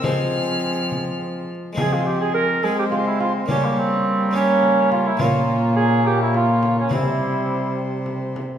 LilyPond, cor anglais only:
\new Staff \with { instrumentName = "Cor anglais" } { \time 6/8 \key f \minor \tempo 4. = 70 aes'2~ aes'8 r8 | aes'16 f'16 g'16 aes'16 bes'8 aes'16 g'16 f'16 e'16 f'8 | des'16 bes16 c'4 des'4 f'16 e'16 | f'4 aes'8 g'16 e'16 f'8. des'16 |
e'4. r4. | }